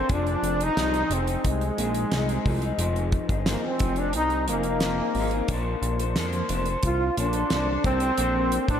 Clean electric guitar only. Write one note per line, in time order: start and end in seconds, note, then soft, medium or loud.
0.00 0.11 D4 medium
0.00 0.10 A4 soft
0.09 0.60 F3 medium
0.09 0.61 C4 medium
0.09 0.59 G#4 medium
0.60 0.78 D#4 soft
0.60 0.77 G#4 soft
0.64 0.77 C4 soft
0.77 1.09 F3 medium
0.77 1.10 C4 medium
0.77 1.12 D#4 medium
0.77 1.12 G#4 medium
1.10 1.27 F3 medium
1.10 1.28 C4 medium
1.10 1.28 D#4 medium
1.15 1.26 G#4 medium
1.28 1.77 C4 soft
1.28 1.78 D#4 soft
1.28 1.78 G#4 soft
1.77 2.09 F3 medium
1.77 2.11 C4 medium
1.77 2.11 D#4 medium
1.81 2.12 G#4 medium
2.10 2.28 F3 medium
2.10 2.29 C4 medium
2.10 2.28 D#4 medium
2.10 2.26 G#4 medium
2.27 2.46 D#4 soft
2.27 2.45 G#4 medium
2.31 2.45 C4 soft
2.44 2.62 F3 medium
2.44 2.63 C4 medium
2.44 2.62 D#4 medium
2.44 2.60 G#4 medium
2.61 2.78 C4 soft
2.61 2.79 D#4 medium
2.61 2.78 G#4 medium
2.78 3.29 F3 medium
2.78 3.30 C4 medium
2.78 3.30 D#4 loud
2.78 3.28 G#4 medium
3.29 3.46 C4 soft
3.29 3.47 D#4 soft
3.29 3.46 G#4 soft
3.46 3.79 F3 medium
3.46 3.80 C4 medium
3.46 3.81 D#4 medium
3.46 3.81 G#4 medium
3.80 3.97 F3 medium
3.80 3.98 C4 medium
3.80 3.97 D#4 medium
3.80 3.95 G#4 medium
3.96 4.47 C4 soft
3.96 4.48 D#4 soft
3.96 4.47 G#4 medium
4.47 4.64 F3 medium
4.47 4.65 C4 medium
4.47 4.65 D#4 medium
4.51 4.64 G#4 medium
4.65 4.81 C4 soft
4.65 4.82 D#4 soft
4.65 4.82 G#4 soft
4.81 4.98 F3 medium
4.81 4.99 C4 medium
4.81 4.99 D#4 medium
4.81 4.96 G#4 medium
4.98 5.16 D#4 soft
4.98 5.15 G#4 soft
5.02 5.17 C4 soft
5.17 5.33 F3 medium
5.17 5.33 C4 medium
5.17 5.34 D#4 medium
5.17 5.31 G#4 medium
5.33 5.50 C4 medium
5.33 5.50 D#4 soft
5.33 5.49 G#4 medium
5.50 6.00 A#3 medium
5.50 6.01 D4 medium
5.50 6.00 A4 medium
5.50 5.98 C5 medium
5.99 6.17 A4 soft
5.99 6.16 C5 medium
6.03 6.16 D4 soft
6.17 6.49 A#3 medium
6.17 6.50 D4 medium
6.17 6.51 A4 medium
6.17 6.52 C5 medium
6.50 6.67 A#3 medium
6.50 6.67 D4 medium
6.50 6.68 A4 medium
6.50 6.66 C5 medium
6.67 7.17 D4 soft
6.67 7.18 A4 soft
6.67 7.17 C5 soft
7.17 7.34 A#3 medium
7.17 7.35 D4 medium
7.17 7.35 A4 medium
7.17 7.32 C5 medium
7.34 7.51 D4 soft
7.34 7.52 A4 soft
7.34 7.51 C5 medium
7.51 7.68 A#3 medium
7.51 7.68 D4 medium
7.51 7.68 A4 medium
7.51 7.67 C5 medium
7.68 7.85 A4 medium
7.68 7.85 C5 soft
7.72 7.84 D4 soft
7.84 8.01 A#3 medium
7.84 8.02 D4 medium
7.84 8.01 A4 medium
7.84 7.99 C5 medium
8.00 8.17 D4 soft
8.00 8.17 A4 soft
8.00 8.18 C5 medium
8.16 8.68 A#3 medium
8.16 8.69 D4 medium
8.16 8.69 A4 medium
8.16 8.66 C5 medium
8.68 8.80 D4 soft
8.68 8.80 A4 soft
8.68 8.80 C5 soft